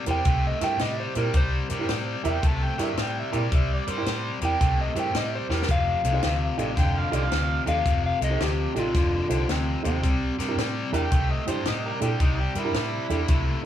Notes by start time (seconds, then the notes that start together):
0.06 E2 C3 G3 E4 G4 A#4 C5, closed hi-hat
0.11 G5
0.25 C2 C3 A3, kick, closed hi-hat
0.47 D#5
0.61 G2 C3 A3 E4 G4 A#4 E5 G5, snare, closed hi-hat
0.79 A2 C3 G3 D#5, snare, closed hi-hat
1.00 C5
1.15 A#2 C3 G3 E4 G4 A#4 D5, closed hi-hat
1.34 C2 C3 G3 C5, kick, closed hi-hat
1.69 G2 C3 G3 A#4 D5, closed hi-hat
1.79 E4 G4 A#4 D5
1.89 A2 C3 G3, snare, closed hi-hat
2.24 E2 C3 G3 E4 G4 A#4 E5, closed hi-hat
2.28 D5 E5 G5
2.42 C2 C3 A3, kick, closed hi-hat
2.47 A5
2.64 G5
2.78 G2 C3 A3 E4 G4 A#4 D5, snare, closed hi-hat
2.82 E5
2.97 A2 C3 G3, snare, closed hi-hat
3.02 G5
3.19 E5
3.32 A#2 C3 G3 E4 G4 A#4 D5, closed hi-hat
3.37 D5
3.50 C2 C3 G3, kick, closed hi-hat
3.56 E5
3.73 D5
3.87 G2 C3 G3 A#4 C5, closed hi-hat
3.91 C5
3.97 E4 G4 A#4 D5
4.05 A2 C3 G3, snare, closed hi-hat
4.41 E2 C3 G3 E4 G4 A#4 D5 G5, closed hi-hat
4.60 C2 C3 A3, kick, closed hi-hat
4.81 D#5
4.95 G2 C3 A3 E4 G4 A#4 C5, closed hi-hat
4.99 G5
5.13 A2 C3 G3 D#5, snare, closed hi-hat
5.35 C5
5.49 E2 C3 G3 E4 G4 A#4 D5, snare
5.55 A#4
5.62 snare
5.68 F1 F2 C3 F5, kick, closed hi-hat
6.04 C2 F2 C3 A4 C5, closed hi-hat
6.12 D#4 G4 A4 C5
6.23 D2 F2 C3, snare, closed hi-hat
6.57 A1 F2 C3 D#4 G4 A4 D5, closed hi-hat
6.76 F1 F2 D3 G5, kick, snare, closed hi-hat
6.98 F5
7.11 C2 F2 D3 D#4 G4 A4 D5, closed hi-hat
7.16 C5 D5 F5
7.31 D2 F2 C3, snare, closed hi-hat
7.66 D#2 F2 C3 D#4 G4 A4 D5 F5, closed hi-hat
7.85 F1 F2 C3, kick, closed hi-hat
8.06 F5
8.20 C2 F2 C3 A4 D#5, closed hi-hat
8.24 D#5
8.30 D#4 G4 A4 C5
8.40 D2 F2 C3 G4, snare, closed hi-hat
8.74 A1 F2 C3 D#4 G4 A4 D5, closed hi-hat
8.79 F4
8.94 F1 F2 D3, kick, snare, closed hi-hat
9.28 C2 F2 D3 D#4 G4 A4 C5, closed hi-hat
9.49 D2 F2 C3 C4, snare, closed hi-hat
9.83 D#2 F2 C3 D#4 G4 A4 C5, closed hi-hat
9.87 C4
10.02 C2 C3 G3, kick, closed hi-hat
10.38 G2 C3 G3 G4 A#4, snare, closed hi-hat
10.47 D4 E4 G4 A#4
10.57 A2 C3 G3, snare, closed hi-hat
10.92 E2 C3 G3 D4 E4 G4 A#4 D5 E5 G5, closed hi-hat
11.11 C2 C3 A3, kick, closed hi-hat
11.30 D#5
11.46 G2 C3 A3 D4 E4 G4 C5, closed hi-hat
11.65 A2 C3 G3 D#5, snare, closed hi-hat
11.86 D#4 G4 A#4
11.99 A#2 C3 G3 D4 E4 G4 A4, closed hi-hat
12.20 C2 C3 G3 D#4, kick, closed hi-hat
12.40 G4
12.54 G2 C3 G3 G4 A#4, closed hi-hat
12.59 E4
12.64 D4 E4 G4 A#4
12.73 A2 C3 G3, snare, closed hi-hat
13.08 E2 C3 G3 D4 E4 G4 A4, closed hi-hat
13.28 C2 C3 A3, kick, closed hi-hat